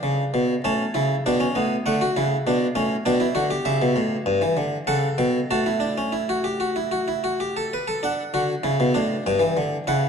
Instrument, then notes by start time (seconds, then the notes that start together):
harpsichord
Already playing: D4 G5
0.03 C#3
0.34 B2
0.64 A2 C#4 A5
0.94 C#3 E4
1.26 B2 D4 G5
1.40 C#4
1.55 A2 B3
1.86 D3 A3 F#5
2.01 F#4
2.17 C#3 E4
2.47 B2 D4
2.75 A2 C#4
3.06 B2 D4 G5
3.20 E4
3.35 D3 F#4
3.51 G4
3.65 C#3 E5
3.82 B2
3.96 A2
4.26 G2
4.42 E3
4.57 D3
4.87 C#3 A4 F#5
5.18 B2 G5
5.51 A2 F#4 A5
5.66 E4
5.80 D4
5.98 C#4
6.12 E4
6.29 F#4
6.44 G4
6.60 F#4
6.76 E4
6.91 F#4
7.08 E4
7.24 F#4
7.40 G4
7.57 A4
7.73 B4
7.88 A4
8.03 D4 F#5
8.34 D3 F#4
8.63 C#3 E4
8.80 B2
8.94 A2 D4
9.26 G2 G5
9.39 E3
9.57 D3
9.87 C#3 E4 F#5